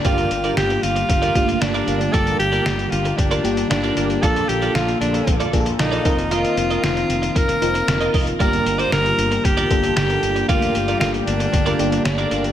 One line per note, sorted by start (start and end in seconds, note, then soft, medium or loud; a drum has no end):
0.05 0.24 G1 medium
0.05 0.80 G2 medium
0.05 6.01 D3 medium
0.05 4.18 G3 medium
0.05 8.36 A#3 medium
0.05 0.80 A#3 medium
0.05 0.80 D4 medium
0.05 0.29 F4 medium
0.05 2.12 F4 medium
0.05 0.54 F4 medium
0.05 0.80 F4 medium
0.05 0.80 G4 medium
0.05 0.29 A#4 medium
0.05 0.29 D5 medium
0.05 kick loud
0.05 closed hi-hat medium
0.18 closed hi-hat soft
0.31 0.50 G1 medium
0.31 muted clean electric guitar stroke soft
0.31 closed hi-hat medium
0.44 0.56 F4 soft
0.44 0.56 A#4 soft
0.44 0.56 D5 medium
0.44 closed hi-hat soft
0.57 0.76 G1 medium
0.57 0.84 G4 medium
0.57 muted clean electric guitar stroke soft
0.57 snare loud
0.57 closed hi-hat medium
0.70 muted clean electric guitar stroke soft
0.70 closed hi-hat soft
0.83 1.02 G1 medium
0.83 1.62 F4 medium
0.83 closed hi-hat medium
0.96 muted clean electric guitar stroke soft
0.96 closed hi-hat medium
1.09 1.28 G1 loud
1.09 muted clean electric guitar stroke soft
1.09 kick medium
1.09 closed hi-hat medium
1.22 1.34 F4 medium
1.22 1.34 A#4 medium
1.22 1.34 D5 medium
1.22 closed hi-hat medium
1.35 1.54 G1 medium
1.35 1.42 A3 medium
1.35 1.92 D4 medium
1.35 1.92 F4 medium
1.35 1.92 G4 medium
1.35 muted clean electric guitar stroke soft
1.35 kick medium
1.35 closed hi-hat medium
1.41 1.94 A#3 medium
1.48 muted clean electric guitar stroke soft
1.48 closed hi-hat medium
1.61 1.80 G1 medium
1.61 2.14 D4 medium
1.61 muted clean electric guitar stroke soft
1.61 snare medium
1.61 closed hi-hat medium
1.74 1.86 F4 medium
1.74 1.86 A#4 medium
1.74 1.87 D5 medium
1.74 closed hi-hat soft
1.87 2.06 G1 medium
1.87 2.04 F4 medium
1.87 2.00 A#4 medium
1.87 1.99 D5 medium
1.87 closed hi-hat medium
2.00 muted clean electric guitar stroke soft
2.00 closed hi-hat soft
2.13 2.33 G1 loud
2.13 2.88 G2 medium
2.13 2.88 A#3 medium
2.13 2.88 D4 medium
2.13 2.37 F4 medium
2.13 2.88 F4 medium
2.13 2.89 G4 medium
2.13 4.21 G4 medium
2.13 2.39 A4 loud
2.13 2.38 A#4 medium
2.13 2.38 D5 medium
2.13 kick loud
2.13 closed hi-hat medium
2.27 closed hi-hat soft
2.39 2.59 G1 medium
2.39 2.93 G4 loud
2.39 muted clean electric guitar stroke soft
2.39 closed hi-hat medium
2.52 2.64 F4 medium
2.52 2.65 A#4 medium
2.52 2.65 D5 medium
2.52 closed hi-hat soft
2.66 2.85 G1 medium
2.66 muted clean electric guitar stroke soft
2.66 snare loud
2.66 closed hi-hat medium
2.78 muted clean electric guitar stroke soft
2.78 closed hi-hat soft
2.91 3.11 G1 loud
2.91 3.19 F4 medium
2.91 closed hi-hat medium
3.05 muted clean electric guitar stroke soft
3.05 closed hi-hat medium
3.17 3.37 G1 loud
3.17 3.69 D4 medium
3.17 muted clean electric guitar stroke soft
3.17 kick medium
3.17 closed hi-hat medium
3.31 3.43 F4 medium
3.31 3.43 A#4 medium
3.31 3.43 D5 medium
3.31 closed hi-hat medium
3.44 3.63 G1 medium
3.44 4.00 A#3 medium
3.44 4.00 D4 medium
3.44 4.00 F4 medium
3.44 4.00 G4 medium
3.44 muted clean electric guitar stroke soft
3.44 closed hi-hat medium
3.57 muted clean electric guitar stroke soft
3.57 closed hi-hat medium
3.70 3.89 G1 medium
3.70 4.24 D4 medium
3.70 muted clean electric guitar stroke soft
3.70 snare medium
3.70 closed hi-hat medium
3.83 3.95 F4 medium
3.83 3.96 A#4 medium
3.83 3.96 D5 medium
3.83 closed hi-hat soft
3.97 4.16 G1 medium
3.97 4.13 F4 medium
3.97 4.09 A#4 medium
3.97 4.08 D5 medium
3.97 closed hi-hat medium
4.10 muted clean electric guitar stroke soft
4.10 closed hi-hat soft
4.22 4.41 A#1 loud
4.22 4.97 A#2 medium
4.22 4.97 A#3 medium
4.22 4.97 D4 medium
4.22 10.44 F4 medium
4.22 4.46 F4 medium
4.22 4.97 F4 medium
4.22 6.03 A4 medium
4.22 4.50 A4 medium
4.22 4.47 A4 medium
4.22 4.98 A4 medium
4.22 4.47 D5 medium
4.22 kick loud
4.22 closed hi-hat medium
4.36 closed hi-hat medium
4.49 4.68 A#1 medium
4.49 4.77 G4 medium
4.49 muted clean electric guitar stroke soft
4.49 closed hi-hat medium
4.62 4.74 F4 soft
4.62 4.74 A4 medium
4.62 4.75 D5 medium
4.62 closed hi-hat soft
4.75 4.94 A#1 medium
4.75 5.00 F4 medium
4.75 snare loud
4.75 closed hi-hat medium
4.88 muted clean electric guitar stroke soft
4.88 closed hi-hat soft
5.01 5.20 A#1 medium
5.01 5.49 D4 medium
5.01 closed hi-hat medium
5.14 muted clean electric guitar stroke medium
5.14 closed hi-hat medium
5.27 5.46 A#1 medium
5.27 muted clean electric guitar stroke soft
5.27 kick medium
5.27 closed hi-hat medium
5.40 5.52 F4 medium
5.40 5.52 A4 medium
5.40 5.53 D5 medium
5.40 closed hi-hat medium
5.53 5.72 A#1 medium
5.53 6.05 A#3 medium
5.53 6.05 D4 medium
5.53 6.04 F4 medium
5.53 5.60 G#4 medium
5.53 muted clean electric guitar stroke soft
5.53 kick medium
5.53 closed hi-hat medium
5.60 6.09 A4 medium
5.66 muted clean electric guitar stroke medium
5.66 closed hi-hat medium
5.79 5.98 A#1 medium
5.79 6.34 D#4 medium
5.79 muted clean electric guitar stroke soft
5.79 snare medium
5.79 closed hi-hat medium
5.92 6.04 F4 medium
5.92 6.05 A4 medium
5.92 6.06 D5 medium
5.92 closed hi-hat soft
6.05 6.43 F1 medium
6.05 8.37 D#3 medium
6.05 8.37 C4 medium
6.05 6.88 C4 medium
6.05 6.89 D#4 medium
6.05 6.22 F4 medium
6.05 6.89 F4 medium
6.05 6.18 A#4 medium
6.05 6.89 A#4 medium
6.05 6.17 D#5 medium
6.05 kick medium
6.05 closed hi-hat medium
6.18 muted clean electric guitar stroke soft
6.18 closed hi-hat soft
6.31 6.55 F4 medium
6.31 6.84 F4 medium
6.31 6.55 A#4 medium
6.31 6.56 D#5 medium
6.31 closed hi-hat medium
6.45 closed hi-hat soft
6.57 6.76 F1 medium
6.57 muted clean electric guitar stroke soft
6.57 closed hi-hat medium
6.70 6.82 F4 soft
6.70 6.82 A#4 medium
6.70 6.83 D#5 medium
6.70 closed hi-hat soft
6.83 7.02 F1 medium
6.83 7.39 F4 medium
6.83 muted clean electric guitar stroke soft
6.83 snare loud
6.83 closed hi-hat medium
6.96 muted clean electric guitar stroke soft
6.96 closed hi-hat soft
7.10 7.28 F1 medium
7.10 closed hi-hat medium
7.22 muted clean electric guitar stroke soft
7.22 closed hi-hat medium
7.35 7.55 F1 medium
7.35 8.15 A#4 medium
7.35 muted clean electric guitar stroke soft
7.35 kick medium
7.35 closed hi-hat medium
7.48 muted clean electric guitar stroke soft
7.48 closed hi-hat medium
7.61 7.80 F1 medium
7.61 8.18 C4 medium
7.61 8.18 D#4 medium
7.61 8.18 F4 medium
7.61 8.18 A#4 medium
7.61 closed hi-hat medium
7.74 muted clean electric guitar stroke medium
7.74 closed hi-hat medium
7.88 8.07 F1 medium
7.88 muted clean electric guitar stroke soft
7.88 snare medium
7.88 closed hi-hat medium
8.01 8.12 F4 medium
8.01 8.13 A#4 medium
8.01 8.13 D#5 medium
8.01 closed hi-hat soft
8.13 8.33 F1 medium
8.13 8.30 F4 medium
8.13 8.26 A#4 medium
8.13 8.25 D#5 medium
8.13 kick medium
8.13 open hi-hat medium
8.27 muted clean electric guitar stroke soft
8.27 closed hi-hat soft
8.39 8.59 G1 loud
8.39 9.14 G2 medium
8.39 12.52 D3 medium
8.39 12.52 G3 medium
8.39 9.14 A#3 medium
8.39 12.52 A#3 medium
8.39 9.15 D4 medium
8.39 8.64 F4 medium
8.39 9.15 F4 medium
8.39 9.15 G4 medium
8.39 8.64 A#4 medium
8.39 8.81 A#4 loud
8.39 8.64 D5 medium
8.39 kick loud
8.39 closed hi-hat medium
8.53 closed hi-hat soft
8.66 8.85 G1 medium
8.66 muted clean electric guitar stroke soft
8.66 closed hi-hat medium
8.78 8.91 F4 soft
8.78 8.91 A#4 medium
8.78 8.92 C5 loud
8.78 8.92 D5 medium
8.78 closed hi-hat soft
8.92 9.11 G1 medium
8.92 9.46 A#4 loud
8.92 muted clean electric guitar stroke soft
8.92 snare medium
8.92 closed hi-hat medium
9.05 muted clean electric guitar stroke soft
9.05 closed hi-hat soft
9.18 9.37 G1 medium
9.18 closed hi-hat medium
9.31 muted clean electric guitar stroke soft
9.31 closed hi-hat medium
9.44 9.63 G1 medium
9.44 9.96 G4 medium
9.44 muted clean electric guitar stroke soft
9.44 kick medium
9.44 closed hi-hat medium
9.57 9.69 F4 medium
9.57 9.69 A#4 medium
9.57 9.70 D5 medium
9.57 closed hi-hat medium
9.70 9.89 G1 medium
9.70 10.26 A#3 medium
9.70 10.26 D4 medium
9.70 10.27 F4 medium
9.70 10.27 A4 medium
9.70 muted clean electric guitar stroke soft
9.70 kick medium
9.70 closed hi-hat medium
9.83 muted clean electric guitar stroke soft
9.83 closed hi-hat medium
9.96 10.15 G1 medium
9.96 10.45 G4 medium
9.96 muted clean electric guitar stroke soft
9.96 snare loud
9.96 closed hi-hat medium
10.09 muted clean electric guitar stroke soft
10.09 closed hi-hat soft
10.23 10.41 G1 medium
10.23 closed hi-hat medium
10.36 muted clean electric guitar stroke soft
10.36 closed hi-hat soft
10.48 10.68 G1 loud
10.48 11.23 G2 medium
10.48 10.55 A3 medium
10.48 11.23 D4 medium
10.48 10.97 F4 medium
10.48 10.73 F4 medium
10.48 11.24 F4 medium
10.48 12.52 G4 medium
10.48 11.24 G4 medium
10.48 10.73 A#4 medium
10.48 10.73 D5 medium
10.48 kick loud
10.48 closed hi-hat medium
10.55 11.26 A#3 medium
10.62 closed hi-hat soft
10.75 10.94 G1 medium
10.75 muted clean electric guitar stroke soft
10.75 closed hi-hat medium
10.88 11.00 F4 soft
10.88 11.00 A#4 medium
10.88 11.00 D5 medium
10.88 closed hi-hat soft
11.00 11.20 G1 medium
11.00 11.12 F4 medium
11.00 muted clean electric guitar stroke soft
11.00 snare medium
11.00 closed hi-hat medium
11.14 muted clean electric guitar stroke soft
11.14 closed hi-hat soft
11.26 11.46 G1 loud
11.26 12.01 D4 medium
11.26 closed hi-hat medium
11.40 muted clean electric guitar stroke medium
11.40 closed hi-hat medium
11.53 11.72 G1 loud
11.53 muted clean electric guitar stroke soft
11.53 kick medium
11.53 closed hi-hat medium
11.66 11.78 F4 medium
11.66 11.78 A#4 medium
11.66 11.79 D5 medium
11.66 closed hi-hat soft
11.79 11.98 G1 medium
11.79 12.35 A#3 medium
11.79 12.35 D4 medium
11.79 12.35 F4 medium
11.79 12.35 G4 medium
11.79 closed hi-hat medium
11.92 muted clean electric guitar stroke soft
11.92 closed hi-hat medium
12.04 12.24 G1 medium
12.04 12.52 D4 medium
12.04 muted clean electric guitar stroke soft
12.04 snare medium
12.04 closed hi-hat medium
12.18 12.30 F4 medium
12.18 12.30 A#4 medium
12.18 12.31 D5 medium
12.18 closed hi-hat soft
12.31 12.50 G1 medium
12.31 12.48 F4 medium
12.31 12.44 A#4 medium
12.31 12.43 D5 medium
12.31 closed hi-hat medium
12.44 muted clean electric guitar stroke soft
12.44 closed hi-hat soft